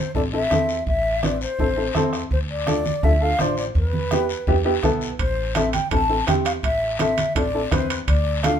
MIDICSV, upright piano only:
0, 0, Header, 1, 2, 480
1, 0, Start_track
1, 0, Key_signature, 0, "minor"
1, 0, Tempo, 360360
1, 1163, Time_signature, 4, 2, 24, 8
1, 11450, End_track
2, 0, Start_track
2, 0, Title_t, "Upright piano"
2, 0, Program_c, 0, 0
2, 193, Note_on_c, 0, 60, 65
2, 201, Note_on_c, 0, 64, 61
2, 204, Note_on_c, 0, 69, 75
2, 282, Note_off_c, 0, 60, 0
2, 286, Note_off_c, 0, 64, 0
2, 288, Note_off_c, 0, 69, 0
2, 439, Note_on_c, 0, 60, 62
2, 442, Note_on_c, 0, 64, 60
2, 445, Note_on_c, 0, 69, 70
2, 525, Note_off_c, 0, 60, 0
2, 527, Note_off_c, 0, 64, 0
2, 528, Note_off_c, 0, 69, 0
2, 674, Note_on_c, 0, 60, 72
2, 681, Note_on_c, 0, 64, 62
2, 686, Note_on_c, 0, 69, 75
2, 1014, Note_off_c, 0, 60, 0
2, 1018, Note_off_c, 0, 64, 0
2, 1020, Note_off_c, 0, 69, 0
2, 1636, Note_on_c, 0, 60, 67
2, 1639, Note_on_c, 0, 64, 64
2, 1646, Note_on_c, 0, 71, 72
2, 1808, Note_off_c, 0, 60, 0
2, 1809, Note_off_c, 0, 64, 0
2, 1812, Note_off_c, 0, 71, 0
2, 2120, Note_on_c, 0, 60, 68
2, 2124, Note_on_c, 0, 64, 61
2, 2130, Note_on_c, 0, 69, 71
2, 2205, Note_off_c, 0, 60, 0
2, 2207, Note_off_c, 0, 64, 0
2, 2210, Note_off_c, 0, 69, 0
2, 2353, Note_on_c, 0, 60, 65
2, 2359, Note_on_c, 0, 64, 59
2, 2362, Note_on_c, 0, 69, 68
2, 2441, Note_off_c, 0, 60, 0
2, 2445, Note_off_c, 0, 64, 0
2, 2446, Note_off_c, 0, 69, 0
2, 2600, Note_on_c, 0, 60, 89
2, 2604, Note_on_c, 0, 64, 75
2, 2612, Note_on_c, 0, 69, 92
2, 2937, Note_off_c, 0, 60, 0
2, 2939, Note_off_c, 0, 64, 0
2, 2943, Note_off_c, 0, 69, 0
2, 3548, Note_on_c, 0, 62, 70
2, 3559, Note_on_c, 0, 65, 62
2, 3563, Note_on_c, 0, 69, 74
2, 3723, Note_off_c, 0, 62, 0
2, 3728, Note_off_c, 0, 65, 0
2, 3730, Note_off_c, 0, 69, 0
2, 4036, Note_on_c, 0, 62, 64
2, 4040, Note_on_c, 0, 65, 62
2, 4047, Note_on_c, 0, 69, 74
2, 4123, Note_off_c, 0, 62, 0
2, 4125, Note_off_c, 0, 65, 0
2, 4128, Note_off_c, 0, 69, 0
2, 4276, Note_on_c, 0, 62, 62
2, 4280, Note_on_c, 0, 65, 58
2, 4284, Note_on_c, 0, 69, 75
2, 4362, Note_off_c, 0, 62, 0
2, 4365, Note_off_c, 0, 65, 0
2, 4367, Note_off_c, 0, 69, 0
2, 4521, Note_on_c, 0, 62, 73
2, 4525, Note_on_c, 0, 65, 66
2, 4528, Note_on_c, 0, 72, 79
2, 4857, Note_off_c, 0, 62, 0
2, 4859, Note_off_c, 0, 65, 0
2, 4860, Note_off_c, 0, 72, 0
2, 5481, Note_on_c, 0, 59, 68
2, 5489, Note_on_c, 0, 64, 62
2, 5492, Note_on_c, 0, 67, 80
2, 5649, Note_off_c, 0, 59, 0
2, 5653, Note_off_c, 0, 64, 0
2, 5654, Note_off_c, 0, 67, 0
2, 5962, Note_on_c, 0, 59, 78
2, 5968, Note_on_c, 0, 64, 72
2, 5973, Note_on_c, 0, 67, 85
2, 6045, Note_off_c, 0, 59, 0
2, 6048, Note_off_c, 0, 64, 0
2, 6051, Note_off_c, 0, 67, 0
2, 6192, Note_on_c, 0, 59, 77
2, 6197, Note_on_c, 0, 64, 68
2, 6203, Note_on_c, 0, 67, 83
2, 6280, Note_off_c, 0, 59, 0
2, 6283, Note_off_c, 0, 64, 0
2, 6285, Note_off_c, 0, 67, 0
2, 6436, Note_on_c, 0, 59, 83
2, 6443, Note_on_c, 0, 64, 76
2, 6450, Note_on_c, 0, 69, 91
2, 6774, Note_off_c, 0, 59, 0
2, 6777, Note_off_c, 0, 64, 0
2, 6781, Note_off_c, 0, 69, 0
2, 7395, Note_on_c, 0, 60, 72
2, 7399, Note_on_c, 0, 64, 65
2, 7406, Note_on_c, 0, 69, 77
2, 7565, Note_off_c, 0, 60, 0
2, 7568, Note_off_c, 0, 64, 0
2, 7571, Note_off_c, 0, 69, 0
2, 7873, Note_on_c, 0, 60, 64
2, 7877, Note_on_c, 0, 64, 60
2, 7880, Note_on_c, 0, 69, 70
2, 7960, Note_off_c, 0, 60, 0
2, 7962, Note_off_c, 0, 64, 0
2, 7964, Note_off_c, 0, 69, 0
2, 8115, Note_on_c, 0, 60, 66
2, 8118, Note_on_c, 0, 64, 59
2, 8125, Note_on_c, 0, 69, 73
2, 8202, Note_off_c, 0, 60, 0
2, 8203, Note_off_c, 0, 64, 0
2, 8207, Note_off_c, 0, 69, 0
2, 8348, Note_on_c, 0, 60, 71
2, 8354, Note_on_c, 0, 64, 64
2, 8362, Note_on_c, 0, 67, 78
2, 8690, Note_off_c, 0, 60, 0
2, 8693, Note_off_c, 0, 64, 0
2, 8697, Note_off_c, 0, 67, 0
2, 9315, Note_on_c, 0, 60, 69
2, 9320, Note_on_c, 0, 64, 65
2, 9327, Note_on_c, 0, 69, 75
2, 9485, Note_off_c, 0, 60, 0
2, 9488, Note_off_c, 0, 64, 0
2, 9491, Note_off_c, 0, 69, 0
2, 9795, Note_on_c, 0, 60, 66
2, 9802, Note_on_c, 0, 64, 58
2, 9805, Note_on_c, 0, 69, 70
2, 9881, Note_off_c, 0, 60, 0
2, 9885, Note_off_c, 0, 64, 0
2, 9886, Note_off_c, 0, 69, 0
2, 10042, Note_on_c, 0, 60, 65
2, 10049, Note_on_c, 0, 64, 57
2, 10053, Note_on_c, 0, 69, 71
2, 10125, Note_off_c, 0, 60, 0
2, 10129, Note_off_c, 0, 64, 0
2, 10131, Note_off_c, 0, 69, 0
2, 10274, Note_on_c, 0, 60, 69
2, 10277, Note_on_c, 0, 64, 61
2, 10288, Note_on_c, 0, 71, 80
2, 10613, Note_off_c, 0, 60, 0
2, 10615, Note_off_c, 0, 64, 0
2, 10620, Note_off_c, 0, 71, 0
2, 11240, Note_on_c, 0, 62, 70
2, 11245, Note_on_c, 0, 65, 67
2, 11253, Note_on_c, 0, 69, 74
2, 11408, Note_off_c, 0, 62, 0
2, 11410, Note_off_c, 0, 65, 0
2, 11415, Note_off_c, 0, 69, 0
2, 11450, End_track
0, 0, End_of_file